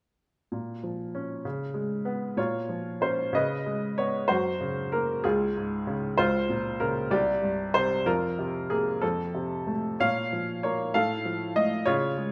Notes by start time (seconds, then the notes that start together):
0.52 A#2
0.83 F3
1.15 C#4
1.45 C#3
1.74 G#3
2.05 B3
2.37 A#2 F4 C#5
2.69 F3
3.01 C#4 C5
3.33 C#3 B4 D#5
3.66 G#3
3.98 B3 C#5
4.28 F#2 F#4 C5
4.61 C#3
4.92 A#3 A#4
5.24 C#2 F4 G#4
5.56 G#2
5.87 C#3
6.18 C#2 F4 C5
6.49 A#2
6.80 C#3 A#4
7.11 C2 G4 D5
7.43 G2
7.74 C3 C5
8.06 F2 F4 A#4
8.39 C3
8.70 A#3 G#4
9.02 F2 C4 A4
9.34 C3
9.67 A3
10.00 A#2 C#5 F5
10.32 F3
10.63 A#3 C#5
10.94 A2 A4 F5
11.25 F3
11.56 A3 D#5
11.86 C#3 F4 C#5
12.17 G#3